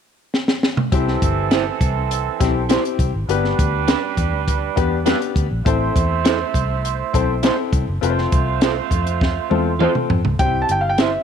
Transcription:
0.34 snare medium
0.48 snare medium
0.63 snare medium
0.77 mid tom medium
0.92 1.16 C2 loud
0.92 2.96 E3 medium
0.92 1.71 C4 medium
0.92 2.96 C4 medium
0.92 1.71 E4 medium
0.92 1.71 G4 medium
0.92 2.96 A4 medium
0.92 1.71 C5 medium
0.92 kick medium
0.92 closed hi-hat medium
1.08 snare soft
1.22 1.69 G1 medium
1.22 kick medium
1.22 closed hi-hat medium
1.51 1.61 E4 medium
1.51 1.62 G4 medium
1.51 1.62 C5 medium
1.51 snare loud
1.51 closed hi-hat medium
1.81 2.28 C2 medium
1.81 kick medium
1.81 closed hi-hat medium
2.11 closed hi-hat medium
2.40 2.76 B1 medium
2.40 2.60 C4 medium
2.40 2.60 E4 medium
2.40 2.60 G4 medium
2.40 2.61 C5 medium
2.40 kick medium
2.40 snare soft
2.40 closed hi-hat medium
2.69 3.09 C4 medium
2.69 2.80 E4 medium
2.69 3.09 E4 medium
2.69 2.80 G4 medium
2.69 3.10 G4 medium
2.69 2.80 C5 medium
2.69 3.10 C5 medium
2.69 snare medium
2.69 closed hi-hat medium
2.85 closed hi-hat medium
2.99 3.11 C2 medium
2.99 kick medium
2.99 closed hi-hat medium
3.14 3.26 G#1 medium
3.28 3.52 G1 medium
3.28 5.32 G3 medium
3.28 4.07 B3 medium
3.28 5.32 D4 medium
3.28 4.08 D4 medium
3.28 4.08 G4 medium
3.28 5.32 B4 medium
3.28 4.08 B4 medium
3.28 closed hi-hat medium
3.44 snare soft
3.59 3.94 D2 medium
3.59 kick medium
3.59 closed hi-hat medium
3.88 3.98 D4 medium
3.88 3.98 G4 medium
3.88 3.99 B4 medium
3.88 snare loud
3.88 closed hi-hat medium
4.17 4.33 E2 medium
4.17 kick medium
4.17 closed hi-hat medium
4.33 4.68 D2 medium
4.48 kick medium
4.48 closed hi-hat medium
4.76 5.13 E2 medium
4.76 4.96 B3 medium
4.76 4.96 D4 medium
4.76 4.97 G4 medium
4.76 4.97 B4 medium
4.76 kick medium
4.76 closed hi-hat medium
5.05 5.45 B3 medium
5.05 5.16 D4 medium
5.05 5.46 D4 medium
5.05 5.46 G4 medium
5.05 5.17 G4 medium
5.05 5.46 B4 medium
5.05 5.17 B4 medium
5.05 snare medium
5.05 closed hi-hat medium
5.22 closed hi-hat soft
5.36 5.48 D2 loud
5.36 kick medium
5.36 closed hi-hat medium
5.51 5.63 A#1 medium
5.65 5.89 A1 loud
5.65 7.69 A3 medium
5.65 6.44 C4 medium
5.65 7.68 E4 medium
5.65 6.44 E4 medium
5.65 6.44 A4 medium
5.65 7.69 C5 medium
5.65 6.45 C5 medium
5.65 kick loud
5.65 closed hi-hat medium
5.96 6.43 E2 medium
5.96 kick medium
5.96 closed hi-hat medium
6.25 6.35 E4 medium
6.25 6.35 A4 medium
6.25 6.36 C5 medium
6.25 snare loud
6.25 closed hi-hat medium
6.54 7.02 C2 medium
6.54 kick medium
6.54 closed hi-hat medium
6.85 closed hi-hat medium
7.13 7.49 B1 medium
7.13 7.33 C4 medium
7.13 7.33 E4 medium
7.13 7.34 A4 medium
7.13 7.34 C5 medium
7.13 kick medium
7.13 closed hi-hat medium
7.43 7.82 C4 medium
7.43 7.53 E4 medium
7.43 7.83 E4 medium
7.43 7.53 A4 medium
7.43 7.83 A4 medium
7.43 7.83 C5 medium
7.43 7.54 C5 medium
7.43 snare medium
7.43 closed hi-hat medium
7.73 7.84 C2 medium
7.73 kick medium
7.73 closed hi-hat medium
7.88 7.99 F#1 medium
8.01 8.26 F1 loud
8.01 10.07 A3 medium
8.01 8.80 C4 medium
8.01 8.80 F4 medium
8.01 10.06 F4 medium
8.01 8.81 A4 medium
8.01 8.09 B4 medium
8.01 10.06 C5 medium
8.01 closed hi-hat medium
8.10 8.84 C5 medium
8.18 snare soft
8.32 8.79 C2 medium
8.32 kick medium
8.32 closed hi-hat medium
8.61 8.71 F4 medium
8.61 8.72 A4 medium
8.61 8.72 C5 medium
8.61 snare loud
8.61 closed hi-hat medium
8.91 9.38 F2 medium
8.91 kick medium
8.91 closed hi-hat medium
9.07 closed hi-hat medium
9.21 kick medium
9.21 snare soft
9.50 9.86 E2 medium
9.50 9.70 C4 medium
9.50 9.70 F4 medium
9.50 9.70 A4 medium
9.50 9.71 C5 medium
9.50 high tom medium
9.79 10.19 C4 medium
9.79 9.89 F4 medium
9.79 10.20 F4 medium
9.79 9.90 A4 medium
9.79 10.20 A4 medium
9.79 9.90 C5 medium
9.79 10.20 C5 medium
9.79 mid tom medium
9.95 mid tom medium
10.10 10.22 F2 medium
10.10 floor tom medium
10.25 10.37 C#2 medium
10.25 floor tom medium
10.39 10.63 C2 medium
10.39 11.18 C4 medium
10.39 10.46 D4 soft
10.39 11.18 G4 medium
10.39 11.19 C5 medium
10.39 10.61 G5 medium
10.39 kick loud
10.39 closed hi-hat medium
10.46 11.21 E4 medium
10.62 10.71 A5 medium
10.69 11.16 G1 medium
10.69 10.80 G5 medium
10.69 closed hi-hat medium
10.81 10.90 F5 medium
10.89 10.98 G5 medium
10.98 11.08 E4 medium
10.98 11.09 G4 medium
10.98 11.09 C5 medium
10.98 11.23 E5 medium
10.98 snare loud
10.98 closed hi-hat medium

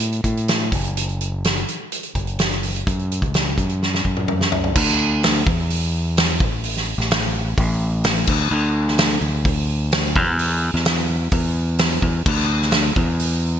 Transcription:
0.00 0.21 A2 medium
0.00 closed hi-hat medium
0.12 closed hi-hat soft
0.24 0.69 A2 medium
0.24 kick medium
0.24 closed hi-hat medium
0.37 closed hi-hat soft
0.48 snare loud
0.48 closed hi-hat medium
0.72 1.63 F#1 medium
0.72 kick loud
0.72 open hi-hat medium
0.85 closed hi-hat soft
0.97 closed hi-hat medium
1.09 closed hi-hat soft
1.21 closed hi-hat medium
1.45 snare loud
1.45 closed hi-hat medium
1.57 closed hi-hat soft
1.68 closed hi-hat medium
1.92 closed hi-hat medium
2.03 closed hi-hat soft
2.15 2.82 F#1 medium
2.15 kick medium
2.15 closed hi-hat medium
2.27 closed hi-hat soft
2.39 snare loud
2.39 closed hi-hat medium
2.50 snare soft
2.50 closed hi-hat soft
2.63 open hi-hat medium
2.76 closed hi-hat soft
2.87 3.20 F#2 medium
2.87 kick loud
2.87 closed hi-hat medium
2.99 closed hi-hat soft
3.12 closed hi-hat medium
3.22 3.55 C#2 medium
3.22 kick medium
3.22 closed hi-hat soft
3.34 snare loud
3.34 closed hi-hat medium
3.58 4.02 F#2 medium
3.58 kick medium
3.58 closed hi-hat medium
3.69 closed hi-hat soft
3.83 snare medium
3.94 snare medium
4.05 4.72 F#2 medium
4.05 kick medium
4.17 mid tom medium
4.28 mid tom medium
4.41 snare medium
4.52 floor tom medium
4.64 floor tom medium
4.76 5.42 D2 loud
4.76 kick loud
4.76 crash loud
4.89 snare soft
5.23 snare loud
5.23 open hi-hat medium
5.47 6.40 E2 medium
5.47 kick loud
5.70 open hi-hat medium
6.17 snare loud
6.17 open hi-hat medium
6.40 6.96 A1 loud
6.40 kick loud
6.64 open hi-hat medium
6.77 snare soft
6.98 7.54 A1 medium
6.98 snare soft
7.11 snare loud
7.11 open hi-hat medium
7.58 8.24 A1 loud
7.58 kick loud
7.58 open hi-hat medium
8.04 snare loud
8.04 open hi-hat medium
8.27 8.50 D2 loud
8.27 kick loud
8.27 crash loud
8.51 9.17 D2 loud
8.88 snare soft
8.98 snare loud
8.98 open hi-hat medium
9.21 10.16 D2 medium
9.45 kick loud
9.45 open hi-hat medium
9.92 snare loud
9.92 open hi-hat medium
10.16 10.71 E2 loud
10.16 kick loud
10.39 open hi-hat medium
10.74 11.29 E2 medium
10.74 snare soft
10.85 snare loud
10.85 open hi-hat medium
11.31 11.99 E2 medium
11.31 kick loud
11.31 open hi-hat medium
11.78 snare loud
11.78 open hi-hat medium
12.02 12.25 E2 loud
12.02 kick medium
12.26 12.93 D2 loud
12.26 kick loud
12.26 crash loud
12.39 snare soft
12.62 snare soft
12.71 snare loud
12.71 open hi-hat medium
12.96 13.60 E2 medium
12.96 kick loud
13.20 open hi-hat medium

